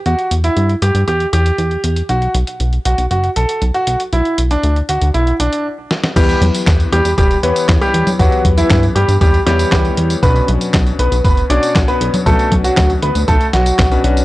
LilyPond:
<<
  \new Staff \with { instrumentName = "Grand piano" } { \time 4/4 \key e \dorian \tempo 4 = 118 fis'8 r16 e'8 r16 g'16 r16 g'16 r16 g'4~ g'16 r16 | fis'8 r4 fis'16 r16 fis'16 r16 a'8 r16 fis'8 r16 | e'8 r16 d'8 r16 fis'16 r16 e'16 r16 d'8 r4 | <g g'>8 r4 <g g'>16 r16 <g g'>16 r16 <b b'>8 r16 <g g'>8 r16 |
<fis fis'>8 r16 <e e'>8 r16 <g g'>16 r16 <g g'>16 r16 <g g'>4~ <g g'>16 r16 | <b b'>8 r4 <b b'>16 r16 <b b'>16 r16 <d' d''>8 r16 <b b'>8 r16 | <a a'>8 r16 <fis fis'>8 r16 <b b'>16 r16 <a a'>16 r16 <fis fis'>4~ <fis fis'>16 r16 | }
  \new Staff \with { instrumentName = "Electric grand piano" } { \time 4/4 \key e \dorian r1 | r1 | r1 | <e b e' g' b'>2~ <e b e' g' b'>8 <e b e' g' cis''>4. |
<e b e' g' b'>2~ <e b e' g' b'>8 <e b e' g' cis''>4. | <b, cis' d' fis' b'>2~ <b, cis' d' fis' b'>8 <b, cis' d' fis' cis''>4. | <b, cis' d' fis' b'>2~ <b, cis' d' fis' b'>8 r8. <b, cis' d' fis' b'>16 <cis' d' fis' b'>8 | }
  \new Staff \with { instrumentName = "Analog synth bass" } { \clef bass \time 4/4 \key e \dorian e,16 r16 e,16 r16 g,16 r16 g,16 g,16 e,16 r16 e,16 r16 e,16 r16 e,16 r16 | b,,16 r16 b,,16 r16 b,,16 r16 b,,16 b,,16 fis,,16 r16 b,,16 r16 b,,16 r16 b,,16 r16 | b,,16 r16 b,,16 r16 d,16 r16 d,16 d,16 b,,16 r16 b,,16 r4 r16 | e,16 r16 e,16 r16 e,16 r16 e,16 e,16 e,,16 r16 e,16 r16 e,16 r16 e,16 r16 |
e,16 r16 e,16 r16 g,16 r16 g,16 g,16 e,16 r16 e,16 r16 e,16 r16 e,16 r16 | b,,16 r16 b,,16 r16 b,,16 r16 b,,16 b,,16 fis,,16 r16 b,,16 r16 b,,16 r16 b,,16 r16 | b,,16 r16 b,,16 r16 d,16 r16 d,16 d,16 b,,16 r16 b,,16 r16 b,,16 r16 b,,16 r16 | }
  \new DrumStaff \with { instrumentName = "Drums" } \drummode { \time 4/4 hh16 hh16 hh16 hh16 hh16 hh16 hh16 hh16 hh16 hh16 hh16 hh16 hh16 hh16 hh16 hh16 | hh16 hh16 hh16 hh16 hh16 hh16 hh16 hh16 hh16 hh16 hh16 hh16 hh16 hh16 hh16 hh16 | hh16 hh16 hh16 hh16 hh16 hh16 hh16 hh16 hh16 hh16 hh16 hh16 r8 sn16 sn16 | <cymc hh bd tamb>16 <hh tamb>16 <cgho hh>16 <hh tamb>16 <hc hh bd sn tamb>16 <hh tamb>16 hh16 <hh tamb>16 <hh bd tamb>16 <hh tamb>16 hh16 <hh tamb>16 <hc hh bd sn tamb>16 <hh tamb>16 hh16 <cgho hh tamb>16 |
<hh bd tamb>16 <hh tamb>16 <cgho hh bd>16 <hh tamb>16 <hc cgho hh bd sn tamb>16 <hh tamb>16 hh16 <hh tamb>16 <hh bd tamb>16 <hh tamb>16 <hh sn>16 <hh tamb>16 <hc hh bd sn tamb>16 <hh tamb>16 hh16 <hh tamb>16 | <hh bd tamb>16 <hh tamb>16 <cgho hh>16 <hh tamb>16 <hc hh bd sn tamb>16 <hh tamb>16 hh16 <hh tamb>16 <hh bd tamb>16 <hh tamb>16 hh16 <hh tamb>16 <hc hh bd sn tamb>16 <hh tamb>16 hh16 <cgho hh tamb>16 | <hh bd tamb>16 <hh tamb>16 <cgho hh bd>16 <hh tamb>16 <hc cgho hh bd sn tamb>16 <hh tamb>16 hh16 <hh tamb>16 <hh bd tamb>16 <hh tamb>16 <hh sn>16 <hh tamb>16 <hc hh bd sn tamb>16 <hh tamb>16 hh16 <hh tamb>16 | }
>>